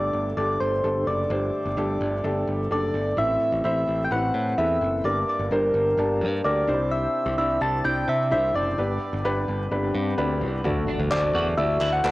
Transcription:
Already playing: G2 D3 G3 A3 D4 G4 A4 D5
0.13 G1
0.37 G1 D4 G4 A4 D5
0.60 G1 C5
0.83 G1 D4 G4 A4
1.07 F#1 G2 D5
1.30 G1 D4 G4 C5
1.65 G1
1.77 G1 D4 G4 A4
2.01 G1
2.24 G1 D4 G4 A4
2.47 G1
2.71 F#1 D4 G4 A4 D5
2.94 G1
3.17 A1 A2 E3 A3 C4 E4 A4 E5
3.53 A1
3.64 A1 C4 E4 C5 E5
3.88 A1
4.05 G5
4.11 A1 C4 E4 B4 F#5
4.34 A2
4.58 E2 B3 E4 A4 E5
4.64 C4
4.81 F#1
5.04 G1 G2 G3 A#3 D4 G4 A#4 D5
5.29 D5
5.39 G1
5.51 G1 D4 G4 A#4 C5
5.74 G1
5.98 G1 D4 G4 A5
6.21 G2
6.44 D2 D4 G4 A#4 D5
6.67 C2 C3 C4 D4 D#4 E4 G4 C5
6.74 E4
6.91 E5
7.26 C2
7.38 C2 D4 E4 D5 E5
7.61 C2 A5
7.84 C2 D4 E4 D5 G5
8.08 C3 E5
8.31 C2 D4 E4 C5 E5
8.54 F#1 D5
8.78 G1 G2 B3 D4 G4 B4, swell
9.13 G1
9.25 G1 D4 G4 B4
9.48 G1
9.71 G1 D4 G4 B4
9.95 G2
10.18 D2 D4 G4 B4
10.41 C2
10.64 D2 D3 A3 D4 F#4 A4 D5, impact
10.88 D4
10.99 D2
11.11 D2 F#4 A4 C5 D5, clap
11.35 E2 F#4
11.57 D2 E4 A4 D5 E5
11.63 F#4
11.81 D2 E4, clap
11.93 F#5
12.04 D2 D4 F#4 A4 B4, clap

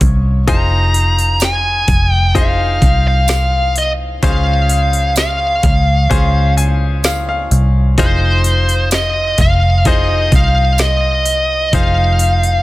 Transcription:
Already playing: C#4 F4 G#4 C#5
0.01 C2, kick, open hi-hat
0.47 F1 D#4 F4 G#4 C5 A#5, kick, open hi-hat
0.94 open hi-hat
1.19 open hi-hat
1.40 snare, open hi-hat, tambourine
1.44 G#5
1.88 F1, kick, open hi-hat
2.08 G5
2.35 D#4 F4 G#4 C5 F5, kick, open hi-hat
2.82 C2, kick, open hi-hat
3.08 F5
3.28 snare, open hi-hat, tambourine
3.76 D#5, open hi-hat
4.23 C#2 C#3 C#4 D#4 G#4 C5 F5, kick, open hi-hat
4.30 F4
4.69 open hi-hat
4.93 open hi-hat
5.16 F5, snare, open hi-hat, tambourine
5.63 C#2, kick, open hi-hat
6.10 C#2 C#4 F4 G#4 C5, kick, open hi-hat
6.57 G#5, open hi-hat
7.04 F5, snare, open hi-hat, tambourine
7.29 F5
7.51 C2, open hi-hat
7.98 D#4 F4 G#4 C5, kick, open hi-hat
8.44 open hi-hat
8.69 open hi-hat
8.91 D#5, snare, open hi-hat, tambourine
9.38 F1 F5, kick, open hi-hat
9.85 D#4 F4 G#4 C5 D#5, kick, open hi-hat
10.32 C2 F5, kick, open hi-hat
10.78 D#5, snare, open hi-hat, tambourine
11.26 open hi-hat
11.73 F1 D#4 F4 G#4 C5 F5, kick, open hi-hat
12.19 open hi-hat
12.43 open hi-hat

